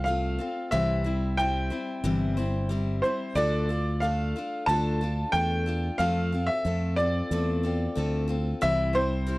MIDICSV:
0, 0, Header, 1, 4, 480
1, 0, Start_track
1, 0, Tempo, 657895
1, 530, Time_signature, 4, 2, 24, 8
1, 6847, End_track
2, 0, Start_track
2, 0, Title_t, "Upright piano"
2, 0, Program_c, 0, 0
2, 29, Note_on_c, 0, 77, 79
2, 519, Note_on_c, 0, 76, 84
2, 534, Note_off_c, 0, 77, 0
2, 1003, Note_on_c, 0, 79, 83
2, 1019, Note_off_c, 0, 76, 0
2, 2203, Note_on_c, 0, 72, 74
2, 2243, Note_off_c, 0, 79, 0
2, 2430, Note_off_c, 0, 72, 0
2, 2448, Note_on_c, 0, 74, 84
2, 2921, Note_on_c, 0, 77, 77
2, 2944, Note_off_c, 0, 74, 0
2, 3377, Note_off_c, 0, 77, 0
2, 3402, Note_on_c, 0, 81, 98
2, 3857, Note_off_c, 0, 81, 0
2, 3882, Note_on_c, 0, 79, 93
2, 4363, Note_on_c, 0, 77, 95
2, 4381, Note_off_c, 0, 79, 0
2, 4702, Note_off_c, 0, 77, 0
2, 4717, Note_on_c, 0, 76, 85
2, 5058, Note_off_c, 0, 76, 0
2, 5081, Note_on_c, 0, 74, 79
2, 6016, Note_off_c, 0, 74, 0
2, 6288, Note_on_c, 0, 76, 96
2, 6528, Note_on_c, 0, 72, 88
2, 6536, Note_off_c, 0, 76, 0
2, 6847, Note_off_c, 0, 72, 0
2, 6847, End_track
3, 0, Start_track
3, 0, Title_t, "Steel-string acoustic guitar"
3, 0, Program_c, 1, 25
3, 42, Note_on_c, 1, 57, 57
3, 51, Note_on_c, 1, 60, 55
3, 56, Note_on_c, 1, 65, 60
3, 64, Note_on_c, 1, 69, 58
3, 273, Note_off_c, 1, 69, 0
3, 282, Note_on_c, 1, 69, 52
3, 284, Note_off_c, 1, 65, 0
3, 286, Note_off_c, 1, 57, 0
3, 290, Note_off_c, 1, 60, 0
3, 293, Note_on_c, 1, 65, 45
3, 299, Note_on_c, 1, 60, 44
3, 518, Note_off_c, 1, 60, 0
3, 524, Note_on_c, 1, 48, 71
3, 524, Note_on_c, 1, 52, 74
3, 525, Note_on_c, 1, 55, 71
3, 526, Note_off_c, 1, 65, 0
3, 526, Note_off_c, 1, 69, 0
3, 527, Note_on_c, 1, 60, 76
3, 529, Note_on_c, 1, 64, 73
3, 533, Note_on_c, 1, 72, 71
3, 753, Note_off_c, 1, 72, 0
3, 761, Note_on_c, 1, 72, 45
3, 763, Note_off_c, 1, 64, 0
3, 766, Note_off_c, 1, 60, 0
3, 767, Note_off_c, 1, 48, 0
3, 767, Note_off_c, 1, 52, 0
3, 768, Note_off_c, 1, 55, 0
3, 772, Note_on_c, 1, 64, 43
3, 775, Note_on_c, 1, 60, 41
3, 781, Note_on_c, 1, 55, 36
3, 999, Note_off_c, 1, 55, 0
3, 1006, Note_off_c, 1, 72, 0
3, 1007, Note_off_c, 1, 60, 0
3, 1008, Note_on_c, 1, 55, 50
3, 1011, Note_off_c, 1, 64, 0
3, 1016, Note_on_c, 1, 60, 57
3, 1019, Note_on_c, 1, 64, 60
3, 1026, Note_on_c, 1, 72, 58
3, 1233, Note_off_c, 1, 72, 0
3, 1240, Note_off_c, 1, 64, 0
3, 1242, Note_on_c, 1, 72, 48
3, 1245, Note_off_c, 1, 60, 0
3, 1249, Note_off_c, 1, 55, 0
3, 1249, Note_on_c, 1, 64, 48
3, 1254, Note_on_c, 1, 60, 43
3, 1262, Note_on_c, 1, 55, 38
3, 1486, Note_off_c, 1, 60, 0
3, 1486, Note_off_c, 1, 72, 0
3, 1486, Note_on_c, 1, 48, 74
3, 1488, Note_off_c, 1, 55, 0
3, 1489, Note_on_c, 1, 52, 75
3, 1490, Note_off_c, 1, 64, 0
3, 1494, Note_on_c, 1, 60, 79
3, 1496, Note_on_c, 1, 55, 75
3, 1498, Note_on_c, 1, 72, 77
3, 1501, Note_on_c, 1, 64, 73
3, 1719, Note_off_c, 1, 72, 0
3, 1726, Note_off_c, 1, 64, 0
3, 1728, Note_off_c, 1, 48, 0
3, 1728, Note_on_c, 1, 72, 58
3, 1730, Note_off_c, 1, 52, 0
3, 1731, Note_off_c, 1, 60, 0
3, 1734, Note_off_c, 1, 55, 0
3, 1734, Note_on_c, 1, 64, 53
3, 1740, Note_on_c, 1, 60, 50
3, 1748, Note_on_c, 1, 55, 45
3, 1955, Note_off_c, 1, 55, 0
3, 1964, Note_on_c, 1, 55, 58
3, 1965, Note_off_c, 1, 60, 0
3, 1969, Note_off_c, 1, 64, 0
3, 1969, Note_off_c, 1, 72, 0
3, 1973, Note_on_c, 1, 60, 59
3, 1977, Note_on_c, 1, 64, 59
3, 1984, Note_on_c, 1, 72, 63
3, 2206, Note_off_c, 1, 72, 0
3, 2207, Note_off_c, 1, 55, 0
3, 2208, Note_off_c, 1, 64, 0
3, 2212, Note_off_c, 1, 60, 0
3, 2215, Note_on_c, 1, 72, 47
3, 2217, Note_on_c, 1, 64, 43
3, 2226, Note_on_c, 1, 60, 42
3, 2231, Note_on_c, 1, 55, 39
3, 2446, Note_on_c, 1, 50, 63
3, 2448, Note_off_c, 1, 55, 0
3, 2451, Note_on_c, 1, 57, 65
3, 2453, Note_off_c, 1, 60, 0
3, 2453, Note_off_c, 1, 72, 0
3, 2454, Note_off_c, 1, 64, 0
3, 2456, Note_on_c, 1, 62, 71
3, 2462, Note_on_c, 1, 65, 74
3, 2463, Note_on_c, 1, 69, 76
3, 2684, Note_off_c, 1, 69, 0
3, 2688, Note_off_c, 1, 50, 0
3, 2691, Note_off_c, 1, 57, 0
3, 2692, Note_off_c, 1, 65, 0
3, 2693, Note_on_c, 1, 69, 48
3, 2694, Note_off_c, 1, 62, 0
3, 2701, Note_on_c, 1, 65, 44
3, 2714, Note_on_c, 1, 62, 37
3, 2929, Note_off_c, 1, 62, 0
3, 2931, Note_on_c, 1, 57, 55
3, 2932, Note_off_c, 1, 69, 0
3, 2933, Note_off_c, 1, 65, 0
3, 2937, Note_on_c, 1, 62, 59
3, 2942, Note_on_c, 1, 65, 53
3, 2950, Note_on_c, 1, 69, 63
3, 3171, Note_off_c, 1, 57, 0
3, 3171, Note_off_c, 1, 69, 0
3, 3174, Note_off_c, 1, 62, 0
3, 3176, Note_off_c, 1, 65, 0
3, 3179, Note_on_c, 1, 69, 46
3, 3186, Note_on_c, 1, 65, 47
3, 3198, Note_on_c, 1, 62, 41
3, 3415, Note_off_c, 1, 62, 0
3, 3415, Note_off_c, 1, 69, 0
3, 3416, Note_off_c, 1, 65, 0
3, 3416, Note_on_c, 1, 50, 67
3, 3421, Note_on_c, 1, 57, 69
3, 3423, Note_on_c, 1, 62, 77
3, 3425, Note_on_c, 1, 65, 76
3, 3428, Note_on_c, 1, 69, 69
3, 3647, Note_off_c, 1, 69, 0
3, 3654, Note_off_c, 1, 50, 0
3, 3655, Note_on_c, 1, 69, 50
3, 3656, Note_off_c, 1, 57, 0
3, 3657, Note_off_c, 1, 62, 0
3, 3658, Note_off_c, 1, 65, 0
3, 3668, Note_on_c, 1, 65, 50
3, 3674, Note_on_c, 1, 62, 40
3, 3886, Note_on_c, 1, 57, 53
3, 3887, Note_off_c, 1, 62, 0
3, 3893, Note_off_c, 1, 65, 0
3, 3893, Note_off_c, 1, 69, 0
3, 3896, Note_on_c, 1, 62, 56
3, 3902, Note_on_c, 1, 65, 50
3, 3907, Note_on_c, 1, 69, 59
3, 4120, Note_off_c, 1, 69, 0
3, 4128, Note_off_c, 1, 57, 0
3, 4129, Note_on_c, 1, 69, 46
3, 4131, Note_off_c, 1, 65, 0
3, 4133, Note_off_c, 1, 62, 0
3, 4140, Note_on_c, 1, 65, 47
3, 4147, Note_on_c, 1, 62, 43
3, 4370, Note_off_c, 1, 69, 0
3, 4370, Note_on_c, 1, 53, 61
3, 4371, Note_off_c, 1, 65, 0
3, 4373, Note_on_c, 1, 57, 72
3, 4375, Note_off_c, 1, 62, 0
3, 4378, Note_on_c, 1, 60, 71
3, 4380, Note_on_c, 1, 65, 74
3, 4381, Note_on_c, 1, 69, 73
3, 4605, Note_off_c, 1, 69, 0
3, 4611, Note_off_c, 1, 53, 0
3, 4612, Note_off_c, 1, 57, 0
3, 4614, Note_off_c, 1, 60, 0
3, 4614, Note_on_c, 1, 69, 46
3, 4615, Note_off_c, 1, 65, 0
3, 4625, Note_on_c, 1, 65, 45
3, 4629, Note_on_c, 1, 60, 39
3, 4846, Note_off_c, 1, 60, 0
3, 4849, Note_on_c, 1, 57, 50
3, 4852, Note_off_c, 1, 65, 0
3, 4852, Note_off_c, 1, 69, 0
3, 4854, Note_on_c, 1, 60, 54
3, 4861, Note_on_c, 1, 65, 53
3, 4865, Note_on_c, 1, 69, 58
3, 5077, Note_off_c, 1, 69, 0
3, 5086, Note_on_c, 1, 69, 49
3, 5089, Note_off_c, 1, 65, 0
3, 5090, Note_off_c, 1, 57, 0
3, 5093, Note_off_c, 1, 60, 0
3, 5098, Note_on_c, 1, 65, 45
3, 5107, Note_on_c, 1, 60, 40
3, 5328, Note_off_c, 1, 69, 0
3, 5330, Note_off_c, 1, 60, 0
3, 5334, Note_off_c, 1, 65, 0
3, 5335, Note_on_c, 1, 57, 65
3, 5339, Note_on_c, 1, 60, 69
3, 5342, Note_on_c, 1, 65, 74
3, 5347, Note_on_c, 1, 69, 77
3, 5561, Note_off_c, 1, 69, 0
3, 5570, Note_off_c, 1, 65, 0
3, 5570, Note_on_c, 1, 69, 47
3, 5573, Note_off_c, 1, 57, 0
3, 5575, Note_off_c, 1, 60, 0
3, 5578, Note_on_c, 1, 65, 46
3, 5588, Note_on_c, 1, 60, 38
3, 5803, Note_on_c, 1, 57, 57
3, 5804, Note_off_c, 1, 60, 0
3, 5810, Note_off_c, 1, 65, 0
3, 5810, Note_off_c, 1, 69, 0
3, 5813, Note_on_c, 1, 60, 64
3, 5819, Note_on_c, 1, 65, 66
3, 5824, Note_on_c, 1, 69, 64
3, 6030, Note_off_c, 1, 69, 0
3, 6038, Note_on_c, 1, 69, 55
3, 6040, Note_off_c, 1, 65, 0
3, 6047, Note_off_c, 1, 57, 0
3, 6049, Note_off_c, 1, 60, 0
3, 6049, Note_on_c, 1, 65, 53
3, 6057, Note_on_c, 1, 60, 44
3, 6283, Note_on_c, 1, 48, 66
3, 6284, Note_off_c, 1, 60, 0
3, 6284, Note_off_c, 1, 69, 0
3, 6285, Note_on_c, 1, 52, 69
3, 6287, Note_on_c, 1, 55, 68
3, 6289, Note_off_c, 1, 65, 0
3, 6293, Note_on_c, 1, 60, 75
3, 6295, Note_on_c, 1, 64, 74
3, 6300, Note_on_c, 1, 72, 71
3, 6508, Note_off_c, 1, 72, 0
3, 6517, Note_on_c, 1, 72, 46
3, 6519, Note_off_c, 1, 64, 0
3, 6522, Note_off_c, 1, 60, 0
3, 6526, Note_off_c, 1, 48, 0
3, 6527, Note_on_c, 1, 64, 43
3, 6528, Note_off_c, 1, 52, 0
3, 6528, Note_off_c, 1, 55, 0
3, 6531, Note_on_c, 1, 60, 43
3, 6536, Note_on_c, 1, 55, 38
3, 6752, Note_off_c, 1, 55, 0
3, 6755, Note_off_c, 1, 60, 0
3, 6760, Note_on_c, 1, 55, 55
3, 6763, Note_off_c, 1, 72, 0
3, 6763, Note_on_c, 1, 60, 53
3, 6764, Note_off_c, 1, 64, 0
3, 6772, Note_on_c, 1, 64, 58
3, 6778, Note_on_c, 1, 72, 62
3, 6847, Note_off_c, 1, 55, 0
3, 6847, Note_off_c, 1, 60, 0
3, 6847, Note_off_c, 1, 64, 0
3, 6847, Note_off_c, 1, 72, 0
3, 6847, End_track
4, 0, Start_track
4, 0, Title_t, "Fingered electric bass"
4, 0, Program_c, 2, 33
4, 0, Note_on_c, 2, 36, 77
4, 277, Note_off_c, 2, 36, 0
4, 530, Note_on_c, 2, 36, 82
4, 1240, Note_off_c, 2, 36, 0
4, 1485, Note_on_c, 2, 31, 73
4, 2197, Note_off_c, 2, 31, 0
4, 2446, Note_on_c, 2, 38, 79
4, 3157, Note_off_c, 2, 38, 0
4, 3409, Note_on_c, 2, 38, 75
4, 3818, Note_off_c, 2, 38, 0
4, 3888, Note_on_c, 2, 40, 73
4, 4297, Note_off_c, 2, 40, 0
4, 4371, Note_on_c, 2, 41, 81
4, 4726, Note_off_c, 2, 41, 0
4, 4850, Note_on_c, 2, 41, 74
4, 5258, Note_off_c, 2, 41, 0
4, 5332, Note_on_c, 2, 40, 77
4, 5739, Note_off_c, 2, 40, 0
4, 5815, Note_on_c, 2, 38, 79
4, 6221, Note_off_c, 2, 38, 0
4, 6294, Note_on_c, 2, 36, 84
4, 6847, Note_off_c, 2, 36, 0
4, 6847, End_track
0, 0, End_of_file